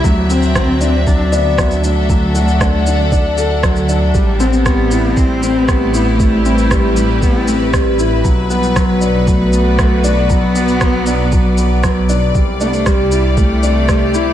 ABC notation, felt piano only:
X:1
M:4/4
L:1/8
Q:1/4=117
K:Ador
V:1 name="Felt piano"
F, C F, D F, D F, D | F, F D D D A F, D | G, C G, E G, C G, E | G, C G, E G, C G, E |
F, B, F, D F, B, F, D | F, B, F, D F, B, F, D | G, D G, E G, D G, E |]